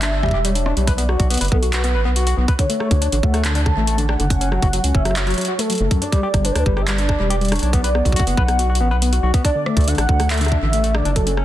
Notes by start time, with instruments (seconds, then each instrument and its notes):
Already playing: analog synth bass G1, soft synth lead E5
0.02 tine electric piano D4, clap, closed hi-hat
0.12 tine electric piano D4
0.23 tine electric piano G3, kick, cross-stick
0.26 kick
0.29 kick
0.31 analog synth bass E1, tine electric piano G4, kick
0.45 tine electric piano G3, soft synth lead C#5, closed hi-hat
0.55 tine electric piano D4, closed hi-hat
0.66 tine electric piano D4, cross-stick
0.77 analog synth bass B1, tine electric piano G3, closed hi-hat
0.87 tine electric piano B4, soft synth lead D5, kick, closed hi-hat
0.98 tine electric piano B3, closed hi-hat
1.09 tine electric piano F#4, cross-stick
1.19 analog synth bass B1, tine electric piano F#4, kick, closed hi-hat
1.30 tine electric piano B3, closed hi-hat
1.34 closed hi-hat
1.37 analog synth bass F#1, tine electric piano B4, closed hi-hat
1.41 closed hi-hat
1.45 closed hi-hat
1.52 analog synth bass B1, tine electric piano B3, soft synth lead A4, kick
1.62 tine electric piano F#4, closed hi-hat
1.73 tine electric piano F#4, soft synth lead B4, clap, closed hi-hat
1.84 tine electric piano B3, closed hi-hat
1.95 analog synth bass A1, tine electric piano B4
2.05 analog synth bass B1, tine electric piano B3
2.16 tine electric piano F#4, closed hi-hat
2.27 tine electric piano F#4, closed hi-hat
2.37 analog synth bass B1, tine electric piano B3
2.48 tine electric piano B4, kick, closed hi-hat
2.59 tine electric piano D3, soft synth lead C#5, kick, closed hi-hat
2.69 tine electric piano A3, closed hi-hat
2.80 tine electric piano A3, cross-stick
2.91 analog synth bass D2, tine electric piano D3, kick, closed hi-hat
3.02 tine electric piano D4, closed hi-hat
3.12 analog synth bass A1, tine electric piano D3, closed hi-hat
3.23 analog synth bass D2, tine electric piano A3, soft synth lead F#5, kick
3.34 tine electric piano A3, cross-stick, closed hi-hat
3.45 tine electric piano D3, soft synth lead A5, clap, closed hi-hat
3.55 tine electric piano D4, closed hi-hat
3.66 tine electric piano D3, kick, cross-stick
3.77 analog synth bass A1, tine electric piano A3
3.87 tine electric piano A3, closed hi-hat
3.98 tine electric piano D3, closed hi-hat
4.09 tine electric piano D4, soft synth lead F#5, cross-stick
4.19 analog synth bass F#1, tine electric piano D3, closed hi-hat
4.30 tine electric piano C#4, kick, closed hi-hat
4.41 tine electric piano C#4, closed hi-hat
4.52 tine electric piano F#3, cross-stick
4.62 analog synth bass F#1, tine electric piano F#4, kick, closed hi-hat
4.73 tine electric piano F#3, closed hi-hat
4.84 analog synth bass C#2, tine electric piano C#4, closed hi-hat
4.95 analog synth bass F#1, tine electric piano C#4, soft synth lead E5, kick
5.05 tine electric piano F#3, cross-stick, closed hi-hat
5.11 cross-stick
5.16 tine electric piano F#4, soft synth lead C#5, cross-stick, clap, closed hi-hat
5.21 cross-stick
5.27 tine electric piano F#3, closed hi-hat
5.30 closed hi-hat
5.34 tine electric piano F#3, closed hi-hat
5.38 closed hi-hat
5.41 closed hi-hat
5.45 tine electric piano F#4, closed hi-hat
5.59 tine electric piano A3, soft synth lead A4, closed hi-hat
5.70 tine electric piano F#3, closed hi-hat
5.72 closed hi-hat
5.75 closed hi-hat
5.78 analog synth bass F#1, tine electric piano A3, closed hi-hat
5.91 tine electric piano F#2, kick, closed hi-hat
6.02 tine electric piano D4, soft synth lead D5, closed hi-hat
6.12 tine electric piano G3, kick, closed hi-hat
6.23 tine electric piano G4
6.34 analog synth bass G1, tine electric piano G3, kick, cross-stick, closed hi-hat
6.45 tine electric piano D4, soft synth lead B4, closed hi-hat
6.52 analog synth bass D2, tine electric piano D4, soft synth lead C#5, cross-stick, closed hi-hat
6.59 soft synth lead B4
6.66 analog synth bass G1, tine electric piano G3, kick
6.77 tine electric piano G4, soft synth lead E5, cross-stick
6.87 tine electric piano G3, soft synth lead D5, clap, closed hi-hat
6.98 tine electric piano D4, closed hi-hat
7.09 tine electric piano D4, kick, cross-stick
7.19 analog synth bass E1, tine electric piano G3
7.30 tine electric piano G4, closed hi-hat
7.41 tine electric piano G3, closed hi-hat
7.45 closed hi-hat
7.48 tine electric piano D4, cross-stick, closed hi-hat
7.52 soft synth lead C#5, closed hi-hat
7.56 closed hi-hat
7.59 analog synth bass B1, tine electric piano D4, closed hi-hat
7.63 closed hi-hat
7.73 tine electric piano B3, soft synth lead D5, kick, closed hi-hat
7.84 tine electric piano B4, closed hi-hat
7.95 tine electric piano B3, cross-stick
8.05 analog synth bass B1, tine electric piano F#4, kick, closed hi-hat
8.12 tine electric piano F#4, soft synth lead F#5, kick, closed hi-hat
8.20 kick
8.27 analog synth bass F#1, tine electric piano B3, closed hi-hat
8.37 analog synth bass B1, tine electric piano B4, kick
8.48 tine electric piano B3, cross-stick, closed hi-hat
8.59 tine electric piano F#4, closed hi-hat
8.70 tine electric piano F#4
8.75 closed hi-hat
8.80 analog synth bass A1, tine electric piano B3
8.91 analog synth bass B1, tine electric piano B4
9.02 tine electric piano B3, closed hi-hat
9.13 tine electric piano F#4, closed hi-hat
9.23 analog synth bass B1, tine electric piano F#4
9.34 tine electric piano B3, kick, closed hi-hat
9.45 tine electric piano D4, soft synth lead D5, kick, closed hi-hat
9.55 tine electric piano D3
9.66 tine electric piano A3, cross-stick
9.77 analog synth bass D2, tine electric piano A3, kick, closed hi-hat
9.81 closed hi-hat
9.84 tine electric piano D3, soft synth lead F#5, closed hi-hat
9.88 closed hi-hat
9.91 closed hi-hat
9.95 analog synth bass A1, tine electric piano D4, cross-stick, closed hi-hat
9.98 closed hi-hat
10.09 analog synth bass D2, tine electric piano D3, kick
10.19 tine electric piano A3, cross-stick, closed hi-hat
10.30 tine electric piano A3, soft synth lead E5, clap, closed hi-hat
10.34 closed hi-hat
10.37 tine electric piano D3, closed hi-hat
10.41 closed hi-hat
10.45 cross-stick, closed hi-hat
10.48 tine electric piano D4, kick, closed hi-hat
10.62 analog synth bass A1, tine electric piano D3
10.73 tine electric piano A3, closed hi-hat
10.84 tine electric piano A3, closed hi-hat
10.94 tine electric piano D3, soft synth lead D5, cross-stick
11.05 analog synth bass F#1, tine electric piano D4, closed hi-hat
11.16 tine electric piano F#3, soft synth lead A4, kick, closed hi-hat
11.27 tine electric piano C#4, closed hi-hat
11.37 tine electric piano C#4, cross-stick